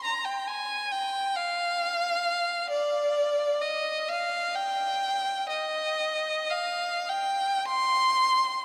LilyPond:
\new Staff \with { instrumentName = "Violin" } { \time 6/8 \key c \minor \tempo 4. = 43 bes''16 g''16 aes''8 g''8 f''4. | d''4 ees''8 f''8 g''4 | ees''4 f''8 g''8 c'''4 | }